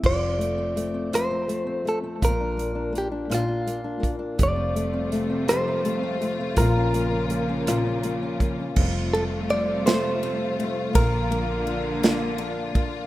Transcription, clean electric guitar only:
X:1
M:6/8
L:1/8
Q:3/8=55
K:F
V:1 name="Clean electric guitar"
d3 c2 A | B2 G F2 z | d2 z c3 | B4 z2 |
z A d c3 | B4- B z |]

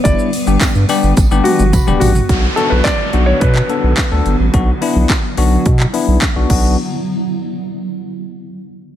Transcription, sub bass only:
X:1
M:4/4
L:1/16
Q:1/4=107
K:Bm
V:1 name="Sub bass" clef=bass
G,,, z2 G,,, G,, G,, z G,,, A,,, G,,, z G,,,2 E,,, A,,,2 | B,,,2 z B,,, z2 B,,,2 B,,2 z B,,, z D,, G,,, A,,, | B,,,2 z B,,, z2 B,,,2 B,,2 z B,,, z B,,, B,,,2 | z16 |]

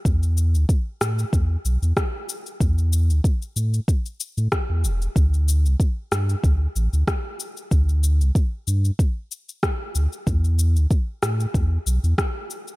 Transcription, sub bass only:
X:1
M:4/4
L:1/16
Q:"Swing 16ths" 1/4=94
K:Ephr
V:1 name="Sub bass" clef=bass
E,,3 D,, z2 A,, z E,, z B,,, E,, z4 | E,,3 D,, z2 A,, z4 A,, z E,, E,,, z | D,,3 C,, z2 G,, z D,, z A,,, D,, z4 | D,,3 C,, z2 G,, z6 z D,, z |
E,,3 D,, z2 A,, z E,, z B,,, E,, z4 |]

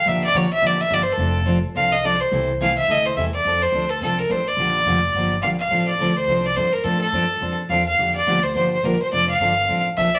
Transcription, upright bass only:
X:1
M:4/4
L:1/8
Q:"Swing" 1/4=212
K:F
V:1 name="Upright bass" clef=bass
B,,,2 B,,,2 A,,,2 G,,,2 | F,,,4 C,,4 | C,,4 D,,2 E,,2 | F,,2 D,,2 C,,2 A,,,2 |
B,,,2 F,,,2 G,,,2 B,,,2 | A,,,2 D,,2 C,,2 G,,2 | A,,2 _G,,2 F,,2 E,,2 | F,,2 D,,2 G,,,2 B,,, z |
F,,,2 G,,,2 A,,,2 B,,,2 |]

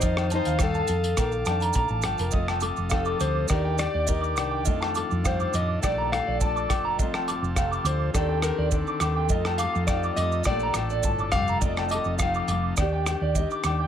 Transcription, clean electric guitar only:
X:1
M:4/4
L:1/16
Q:"Swing 16ths" 1/4=104
K:Fmix
V:1 name="Clean electric guitar"
e z a f z a z2 B z a b b a a B | e a d' z f d' d' z d g z d e d' d' g | e a d' z f d' d' z d b z d a d' d' b | e a d' z f d' d' z d g z d z d' d' g |
e a d' z f d' d' z d b z d a d' d' b | e a d' z f d' d' z d g z d e d' d' g |]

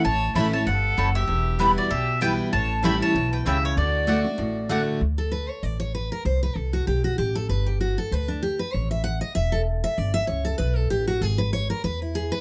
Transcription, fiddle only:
X:1
M:4/4
L:1/8
Q:"Swing" 1/4=193
K:D
V:1 name="Fiddle"
c2 e c A3 G- | G3 F G2 B2 | c2 e c2 B G E | F6- F z |
z8 | z8 | z8 | z8 |
z8 | z8 |]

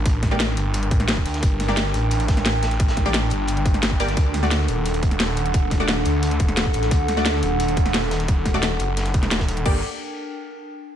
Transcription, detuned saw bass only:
X:1
M:4/4
L:1/8
Q:1/4=175
K:Gm
V:1 name="Detuned saw bass" clef=bass
A,,,3 G,,,2 A,,,2 D,, | G,,,3 A,,,4- A,,,- | A,,,3 G,,,4- G,,, | D,,3 E,,,4- E,,,- |
E,,,3 D,,2 E,,,2 A,,, | D,,3 E,,,4- E,,,- | E,,,3 ^F,,,3 E,,,2 | G,,, z6 z |]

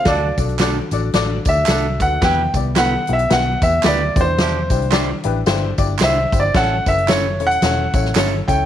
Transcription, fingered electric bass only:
X:1
M:4/4
L:1/8
Q:"Swing" 1/4=111
K:Clyd
V:1 name="Fingered electric bass" clef=bass
D,, B,,,2 A,,, A,,, D,, C,, D,, | E,, C,,2 B,,, B,,, E,, D,, E,,- | E,, C,,2 A,,, G,,, G,,, C,, G,,, | A,,, F,,,2 E,,, E,,, A,,, G,,, ^C,, |]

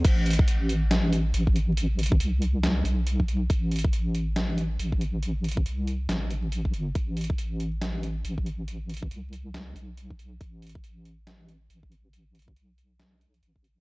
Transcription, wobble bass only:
X:1
M:4/4
L:1/8
Q:"Swing 16ths" 1/4=139
K:Am
V:1 name="Wobble bass" clef=bass
A,,,6 A,,,2- | A,,,2 C,,3 B,,,3 | A,,,6 A,,,2- | A,,,2 C,,2 A,,,3 G,,, |
A,,,6 A,,,2- | A,,,2 C,,3 B,,,3 | A,,,6 A,,,2- | A,,,2 B,,,4 A,,,2 |]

